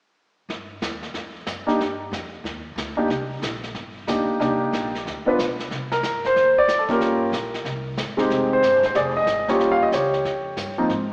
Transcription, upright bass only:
0.49 0.81 G2 medium
0.82 1.13 D#2 medium
1.14 1.46 F2 medium
1.46 1.78 F#2 medium
1.78 2.11 G2 medium
2.11 2.43 F2 medium
2.44 2.75 D#2 medium
2.76 3.07 D2 medium
3.08 3.41 C2 medium
3.42 3.74 A#1 medium
3.74 4.06 G1 medium
4.07 4.27 D2 medium
4.28 muted upright bass stroke soft
4.40 4.72 C2 medium
4.72 5.04 A#1 medium
5.05 5.37 D2 medium
5.38 5.70 B1 medium
5.71 6.02 C2 medium
6.03 6.34 G2 medium
6.36 6.67 D#2 medium
6.68 6.99 F2 medium
7.00 7.31 G2 medium
7.32 7.64 A#1 medium
7.65 7.96 C2 medium
7.97 8.29 G#1 medium
8.30 8.62 F1 medium
8.63 8.94 G1 medium
8.95 9.26 F1 medium
9.26 9.58 G#1 medium
9.59 9.91 D#2 medium
9.92 10.24 C#2 medium
10.24 10.56 F2 medium
10.57 10.89 G2 medium
10.89 11.13 G#2 medium

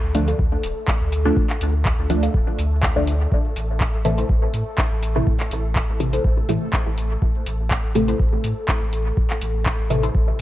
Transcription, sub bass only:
0.03 0.34 D2 medium
0.39 0.57 D2 medium
0.64 0.73 D1 medium
1.01 1.32 D2 medium
1.61 1.93 D2 loud
1.99 2.29 D2 medium
2.34 2.44 D1 medium
2.59 2.90 D2 loud
2.96 3.27 D2 loud
3.56 3.88 A1 loud
3.94 4.24 A1 medium
4.29 4.48 A1 medium
4.54 4.63 A2 medium
4.91 5.22 A1 medium
5.51 5.83 A1 loud
5.89 6.20 A1 medium
6.24 6.43 A1 medium
6.49 6.58 A2 medium
6.86 7.17 A1 medium
7.46 7.78 A1 loud
7.84 8.15 A1 medium
8.20 8.38 A1 medium
8.44 8.54 A2 medium
8.81 9.12 A1 loud
9.42 9.73 A1 loud
9.79 10.10 A1 medium
10.15 10.33 A1 medium

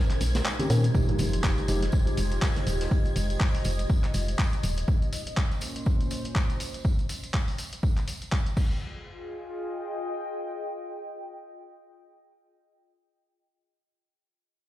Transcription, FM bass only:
0.21 0.41 A#1 medium
0.70 0.90 A#2 loud
1.19 1.39 F1 loud
1.68 1.88 F1 medium
2.17 2.38 F1 medium
2.67 2.87 D#1 loud
3.16 3.36 F1 loud
3.65 3.85 F1 medium
4.14 4.34 F1 medium
4.63 4.84 D#1 loud

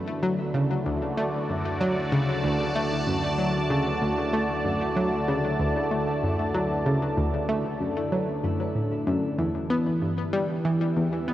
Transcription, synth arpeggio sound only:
0.00 0.21 F#2 medium
0.23 0.35 F#3 medium
0.54 0.66 C#3 medium
0.86 0.98 D2 medium
1.17 1.38 A3 medium
1.49 1.79 F#2 medium
1.81 1.93 F#3 loud
2.12 2.24 C#3 loud
2.44 2.56 D2 loud
2.75 2.96 A3 loud
3.07 3.37 F#2 medium
3.38 3.51 F#3 medium
3.70 3.82 C#3 loud
4.02 4.14 D2 loud
4.33 4.54 A3 loud
4.65 4.95 F#2 medium
4.96 5.09 F#3 loud
5.28 5.40 C#3 loud
5.60 5.72 D2 medium
5.91 6.11 A3 medium
6.23 6.53 F#2 medium
6.54 6.67 F#3 loud
6.86 6.98 C#3 loud
7.17 7.30 D2 loud
7.49 7.69 A3 loud
7.81 8.11 F#2 medium
8.12 8.24 F#3 medium
8.44 8.74 F#2 medium
8.75 8.96 A2 medium
9.07 9.37 F#2 loud
9.38 9.51 E2 loud
9.70 9.90 B3 loud
10.02 10.32 G2 medium
10.33 10.45 G3 loud
10.65 10.77 E3 loud
10.96 11.09 E2 medium
11.28 11.34 B3 medium

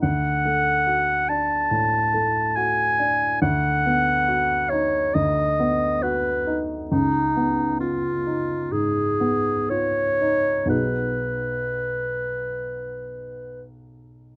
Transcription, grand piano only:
0.03 1.68 D2 medium
0.45 1.13 A3 soft
0.87 1.55 F#4 soft
1.29 1.97 D4 soft
1.71 2.39 A2 soft
2.14 2.82 A3 soft
2.57 3.25 F#4 soft
2.99 3.42 D4 soft
3.42 5.11 D2 medium
3.86 4.54 B3 soft
4.28 4.98 F#4 medium
4.72 5.42 D#4 soft
5.15 6.88 D2 soft
5.60 6.30 B3 soft
6.03 6.74 F#4 medium
6.47 6.91 D#4 medium
6.92 8.69 C#2 medium
7.37 8.09 B3 soft
7.81 8.54 F4 soft
8.27 9.01 D#4 soft
8.72 9.51 G#2 soft
9.20 10.01 B3 soft
9.72 10.51 F4 soft
10.21 10.66 D#4 soft
10.66 14.36 B1 soft
10.66 14.36 B3 soft
10.66 14.36 D#4 soft
10.66 14.36 F#4 soft
10.66 14.36 G#4 soft

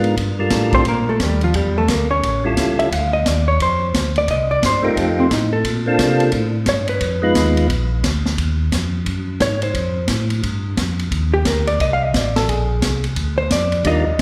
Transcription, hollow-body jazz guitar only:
0.75 0.87 C4 medium
0.75 0.86 C5 medium
0.89 1.09 A#3 medium
0.89 1.08 A#4 medium
1.09 1.21 A3 medium
1.09 1.21 A4 medium
1.23 1.43 G3 medium
1.23 1.43 G4 medium
1.44 1.55 F3 medium
1.44 1.55 F4 medium
1.55 1.76 G3 medium
1.55 1.76 G4 medium
1.78 1.89 A3 medium
1.78 1.89 A4 medium
1.90 2.10 A#3 medium
1.90 2.10 A#4 medium
2.10 2.42 C#4 medium
2.10 2.42 C#5 medium
2.79 2.93 E5 medium
2.93 3.13 F5 loud
3.13 3.26 D#5 loud
3.26 3.47 D5 medium
3.48 3.60 C#5 medium
3.62 4.13 C5 medium
4.18 4.29 D5 loud
4.31 4.50 D#5 loud
4.51 4.63 D5 loud
4.66 4.85 C5 medium
4.84 4.99 A#4 medium
4.99 5.19 A4 medium
5.20 5.31 C4 medium
5.33 5.53 D#4 medium
5.53 6.29 A4 medium
6.69 6.89 C#5 medium
6.89 7.33 B4 medium
9.42 9.62 C#5 medium
9.63 10.06 C5 medium
11.34 11.46 G4 loud
11.47 11.68 A#4 medium
11.68 11.80 D5 loud
11.81 11.92 D#5 medium
11.93 12.05 F5 loud
12.05 12.18 D#5 loud
12.18 12.37 D5 medium
12.36 12.50 A4 medium
12.50 13.05 G#4 medium
13.38 13.50 C5 loud
13.52 13.83 D5 medium
13.87 14.22 D#5 medium

